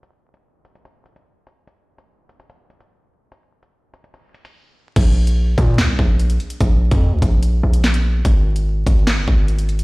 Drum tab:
CC |----------------|----------------|----------------|x---------------|
HH |x--x--xxx-xx--x-|x--x--xxx-xx----|x--x--xxx-xx----|x--x--x-----xxxx|
CP |----------------|----------------|----------------|--------x-------|
SD |----------------|----------------|----------------|--------o-------|
BD |----------------|----------------|----------------|o-----o---o-----|

CC |----------------|----------------|
HH |x--x--x-x--x-x--|x--x--x-----xxxx|
CP |------------x---|--------x-------|
SD |------------o---|--------o-------|
BD |o--o--o---------|o-----o---o-----|